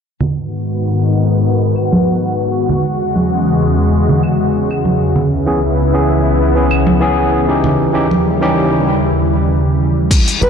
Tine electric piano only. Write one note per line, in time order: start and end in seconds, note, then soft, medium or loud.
5.46 5.59 E3 medium
5.46 5.59 B3 medium
5.46 5.59 C#4 medium
5.46 5.60 G#4 medium
5.93 6.52 E3 medium
5.93 6.52 B3 medium
5.93 6.52 C#4 medium
5.93 6.53 G#4 medium
6.55 6.98 E3 medium
6.55 6.98 B3 medium
6.55 6.98 C#4 medium
6.55 6.99 G#4 medium
7.00 7.45 E3 medium
7.00 7.45 B3 medium
7.00 7.45 C#4 medium
7.00 7.45 G#4 medium
7.48 7.90 E3 medium
7.48 7.91 C#4 medium
7.48 7.91 D#4 medium
7.48 7.91 G4 medium
7.93 8.06 E3 medium
7.93 8.06 C#4 medium
7.93 8.07 D#4 medium
7.93 8.07 G4 medium
8.41 8.87 E3 medium
8.41 8.87 C#4 medium
8.41 8.87 D#4 medium
8.41 8.88 G4 medium
10.41 10.50 F#3 medium
10.41 10.50 B3 medium
10.41 10.50 D#4 medium
10.41 10.50 G#4 medium